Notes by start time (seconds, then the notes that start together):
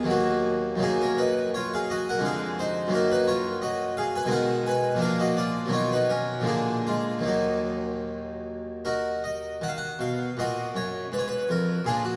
0.03 D#2 D#3 F#3
0.10 A#3 F#4
0.76 F#2 D#3 F#3
0.80 A#3 G#4
0.84 D#4
1.02 C#4 A#4
1.18 D#4 B4
1.54 F4 C#5
1.74 G#4 F5
1.90 F#4 D#5
2.09 A#4 F#5
2.18 F2 D3 G#3
2.25 G#4 F5
2.59 D#4 C5
2.87 F#2 D#3 F#3 A#3
2.94 D#4 A#4
3.11 D#4 B4
3.28 F4 C#5
3.62 F#4 D#5
3.97 G#4 F5
4.15 B4 G#5
4.25 B2 D#3 G#3 D#4
4.31 A#4 F#5
4.66 B4 G#5
4.95 A#2 F3 A#3
4.99 D4 F5
5.03 A#4
5.20 F#4 D#5
5.37 F4 D5
5.66 B2 D#3 F#3
5.70 D#4 F4 C#5
5.92 D#4 B4
6.09 C#4 A#4
6.40 A#2 D3 F3 A#3
6.47 D4 G#4
6.87 G#3 F4
7.19 D#2 D#3
7.23 A#3 D#4
7.28 F#3
8.85 D#4 F#4 A#4
9.24 D#5
9.61 D#3 F#5
9.68 F5
9.78 F#5
9.99 B2 F5
10.37 A#2 F#4 A#4 D#5
10.75 F#2 C#5
11.12 G#2 B4
11.19 C#5
11.28 B4
11.49 F2 A#4
11.85 A#2 D4 F4 G#4
12.05 F#4